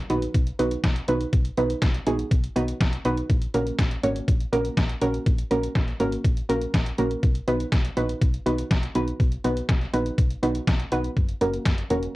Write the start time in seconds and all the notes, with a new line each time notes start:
0.10 A#1 B3 D#4 F#4 B4, closed hi-hat
0.22 closed hi-hat
0.34 B1, kick, closed hi-hat
0.47 closed hi-hat
0.59 B1 B3 D#4 F#4 B4, closed hi-hat
0.71 closed hi-hat
0.84 B1, kick, snare, closed hi-hat
0.96 closed hi-hat
1.08 B1 B3 D#4 F#4 B4, closed hi-hat
1.21 closed hi-hat
1.33 B1, kick, closed hi-hat
1.45 closed hi-hat
1.57 B1 B3 D#4 F#4 B4, closed hi-hat
1.70 closed hi-hat
1.82 B1, kick, snare, closed hi-hat
1.94 closed hi-hat
2.07 A#1 B3 D#4 F#4 G#4, closed hi-hat
2.19 closed hi-hat
2.31 B1, kick, closed hi-hat
2.44 closed hi-hat
2.56 B1 B3 D#4 F#4 B4, closed hi-hat
2.68 closed hi-hat
2.81 B1, kick, snare, closed hi-hat
2.93 closed hi-hat
3.05 B1 B3 D#4 F#4 B4, closed hi-hat
3.17 closed hi-hat
3.30 A#1, kick, closed hi-hat
3.42 closed hi-hat
3.54 A#1 A#3 C#4 F#4 A#4, closed hi-hat
3.67 closed hi-hat
3.79 A#1, kick, snare, closed hi-hat
3.91 closed hi-hat
4.03 G#1 A#3 C#4 F#4 C#5, closed hi-hat
4.16 closed hi-hat
4.28 A#1, kick, closed hi-hat
4.40 closed hi-hat
4.53 A#1 A#3 C#4 F#4 A#4, closed hi-hat
4.65 closed hi-hat
4.77 A#1, kick, snare, closed hi-hat
4.90 closed hi-hat
5.02 A#1 A#3 C#4 F#4 A#4, closed hi-hat
5.14 closed hi-hat
5.26 A#1, kick, closed hi-hat
5.38 closed hi-hat
5.51 A#1 A#3 C#4 F#4 A#4, closed hi-hat
5.63 closed hi-hat
5.75 A#1, kick, snare, closed hi-hat
5.88 closed hi-hat
6.00 G#1 A#3 C#4 F#4 A#4, closed hi-hat
6.13 closed hi-hat
6.25 A#1, kick, closed hi-hat
6.37 closed hi-hat
6.49 A#1 A#3 C#4 F#4 A#4, closed hi-hat
6.62 closed hi-hat
6.74 A#1, kick, snare, closed hi-hat
6.86 closed hi-hat
6.98 A#1 A#3 C#4 F#4 A#4, closed hi-hat
7.11 closed hi-hat
7.23 B1, kick, closed hi-hat
7.35 closed hi-hat
7.48 B1 B3 D#4 F#4 B4, closed hi-hat
7.60 closed hi-hat
7.72 B1, kick, snare, closed hi-hat
7.85 closed hi-hat
7.97 A#1 B3 D#4 F#4 B4, closed hi-hat
8.09 closed hi-hat
8.21 B1, kick, closed hi-hat
8.34 closed hi-hat
8.46 B1 B3 D#4 F#4 B4, closed hi-hat
8.58 closed hi-hat
8.71 B1, kick, snare, closed hi-hat
8.83 closed hi-hat
8.95 B1 B3 D#4 F#4 B4, closed hi-hat
9.08 closed hi-hat
9.20 B1, kick, closed hi-hat
9.32 closed hi-hat
9.44 B1 B3 D#4 F#4 B4, closed hi-hat
9.57 closed hi-hat
9.69 B1, kick, snare, closed hi-hat
9.81 closed hi-hat
9.93 A#1 B3 D#4 F#4 B4, closed hi-hat
10.06 closed hi-hat
10.18 B1, kick, closed hi-hat
10.31 closed hi-hat
10.43 B1 B3 D#4 F#4 B4, closed hi-hat
10.55 closed hi-hat
10.67 B1, kick, snare, closed hi-hat
10.80 closed hi-hat
10.92 B1 B3 D#4 F#4 B4, closed hi-hat
11.04 closed hi-hat
11.16 F#1, kick, closed hi-hat
11.28 closed hi-hat
11.41 F#1 A#3 C#4 F#4 A#4, closed hi-hat
11.54 closed hi-hat
11.65 F#1, kick, snare, closed hi-hat
11.78 closed hi-hat
11.90 E1 A#3 C#4 F#4 A#4, closed hi-hat
12.03 closed hi-hat